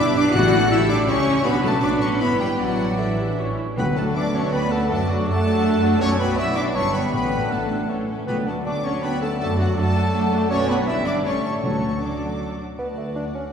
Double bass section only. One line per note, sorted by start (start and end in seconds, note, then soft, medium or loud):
0.00 0.35 B1 loud
0.34 1.08 A1 loud
1.08 1.45 C#2 loud
1.45 1.82 B1 loud
1.83 2.21 A1 loud
2.21 2.60 G1 medium
2.59 3.38 A1 medium
3.39 3.58 A1 medium
3.77 4.11 D2 medium
4.15 4.49 D2 medium
4.53 4.86 D2 medium
4.90 5.23 F#2 medium
5.27 5.60 F#2 loud
5.65 5.97 F#2 loud
6.01 6.34 B1 loud
6.38 6.71 B1 loud
6.76 7.09 G1 medium
7.13 7.47 A1 medium
7.51 7.84 A1 medium
7.89 8.23 A1 medium
8.27 8.60 D2 medium
8.65 8.98 D2 medium
9.02 9.35 D2 medium
9.40 9.72 F#2 medium
9.77 10.09 F#2 medium
10.14 10.46 F#2 medium
10.51 10.85 B1 medium
10.88 11.24 G1 medium
11.25 11.63 A1 medium
11.63 12.59 D2 medium
12.79 13.49 D2 medium